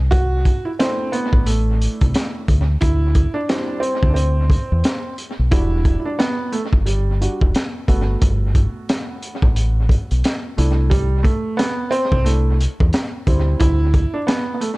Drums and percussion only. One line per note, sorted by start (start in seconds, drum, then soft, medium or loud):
0.12 kick loud
0.12 closed hi-hat medium
0.45 kick medium
0.45 closed hi-hat medium
0.80 snare loud
0.80 closed hi-hat medium
1.13 closed hi-hat medium
1.33 kick loud
1.46 closed hi-hat medium
1.82 closed hi-hat medium
2.01 kick medium
2.01 closed hi-hat medium
2.14 snare loud
2.14 closed hi-hat medium
2.48 kick medium
2.48 closed hi-hat medium
2.81 kick loud
2.81 closed hi-hat medium
3.15 kick medium
3.15 closed hi-hat medium
3.49 snare loud
3.49 closed hi-hat medium
3.83 closed hi-hat medium
4.03 kick medium
4.16 closed hi-hat medium
4.50 kick medium
4.50 closed hi-hat medium
4.84 snare loud
4.84 closed hi-hat medium
5.18 closed hi-hat medium
5.52 kick loud
5.52 closed hi-hat medium
5.85 kick medium
5.85 closed hi-hat medium
6.20 snare loud
6.20 closed hi-hat medium
6.53 closed hi-hat medium
6.73 kick medium
6.86 closed hi-hat medium
7.22 closed hi-hat medium
7.41 kick medium
7.55 snare loud
7.55 closed hi-hat medium
7.88 kick medium
7.88 closed hi-hat medium
8.22 kick loud
8.22 closed hi-hat medium
8.55 kick medium
8.55 closed hi-hat medium
8.89 snare loud
8.89 closed hi-hat medium
9.22 closed hi-hat medium
9.42 kick medium
9.56 closed hi-hat medium
9.89 kick medium
9.89 closed hi-hat medium
10.11 closed hi-hat soft
10.24 snare medium
10.24 closed hi-hat medium
10.58 closed hi-hat medium
10.91 kick loud
10.91 closed hi-hat medium
11.25 kick loud
11.25 closed hi-hat medium
11.59 snare loud
11.59 closed hi-hat medium
11.92 closed hi-hat medium
12.12 kick loud
12.26 closed hi-hat medium
12.61 closed hi-hat medium
12.80 kick medium
12.93 snare loud
12.93 closed hi-hat medium
13.27 kick medium
13.27 closed hi-hat medium
13.60 kick loud
13.60 closed hi-hat medium
13.94 kick medium
13.94 closed hi-hat medium
14.28 snare loud
14.28 closed hi-hat medium
14.61 closed hi-hat medium